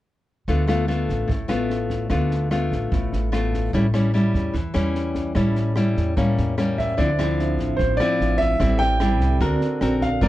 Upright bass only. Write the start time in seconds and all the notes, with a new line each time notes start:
0.48 D2
1.09 A1
1.30 A1
1.50 A1
2.11 D2
2.72 A1
2.92 A1
3.13 A1
3.74 A1
4.34 E2
4.55 E2
4.75 E2
5.36 A1
5.97 E2
6.17 A1
6.38 E2
6.99 D2
7.59 A1
7.80 A1
8.20 A1
8.60 A1
9.21 C2
9.41 D2
9.81 A#1
10.22 G1